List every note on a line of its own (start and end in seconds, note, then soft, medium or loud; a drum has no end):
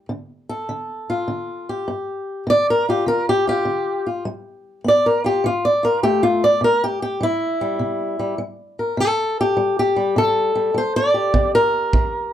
0.09 0.65 D3 medium
0.49 1.68 A4 medium
0.69 1.24 D3 medium
1.10 1.91 F4 medium
1.28 1.83 D3 medium
1.69 2.50 G4 medium
1.88 2.43 G2 medium
2.47 3.02 D3 medium
2.47 2.68 D5 loud
2.70 2.88 A#4 medium
2.89 3.46 F4 soft
2.89 3.07 G4 medium
3.06 3.62 D3 medium
3.06 3.27 A#4 medium
3.29 3.47 G4 medium
3.47 4.05 F4 soft
3.47 4.06 G4 medium
3.65 4.20 D3 medium
4.07 4.23 F4 soft
4.25 4.80 G3 medium
4.84 5.39 B3 medium
4.84 5.06 D5 medium
5.06 5.25 A#4 medium
5.24 5.43 F4 soft
5.24 5.44 G4 medium
5.44 5.99 D3 medium
5.44 5.64 F4 medium
5.65 5.84 D5 medium
5.83 6.22 F4 soft
5.83 6.03 A#4 medium
6.03 6.42 A3 medium
6.03 6.22 G4 medium
6.23 6.42 F4 medium
6.44 6.62 D5 loud
6.61 7.16 C3 medium
6.61 6.83 A#4 medium
6.84 7.01 G4 medium
7.02 7.21 G4 medium
7.21 7.60 G3 medium
7.21 8.40 E4 medium
7.61 8.19 G3 soft
7.79 8.35 C3 medium
8.19 8.38 G3 soft
8.38 8.94 G3 medium
8.79 9.00 A#4 soft
8.97 9.53 C3 medium
8.97 9.39 A4 medium
9.41 9.78 G4 medium
9.57 9.95 G3 medium
9.79 10.18 G4 medium
9.96 10.55 G3 soft
10.16 10.72 C3 medium
10.16 10.77 A4 loud
10.55 10.74 G3 soft
10.74 11.30 G3 medium
10.74 10.96 C5 medium
10.96 11.54 D5 loud
11.14 12.33 G4 soft
11.34 11.90 C3 medium
11.34 kick medium
11.55 12.33 A#4 loud
11.93 12.33 E3 medium
11.93 kick medium